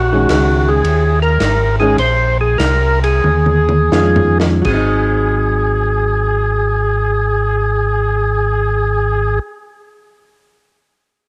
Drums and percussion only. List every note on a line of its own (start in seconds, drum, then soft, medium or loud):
0.29 snare medium
0.29 hi-hat pedal soft
0.29 ride medium
0.84 ride medium
1.40 snare medium
1.40 hi-hat pedal soft
1.40 ride medium
1.98 ride soft
2.60 snare medium
2.60 hi-hat pedal medium
2.60 ride medium
3.04 ride soft
3.24 mid tom soft
3.46 mid tom soft
3.69 mid tom medium
3.92 snare medium
3.92 hi-hat pedal soft
4.16 floor tom medium
4.40 snare medium
4.64 kick medium
4.64 crash medium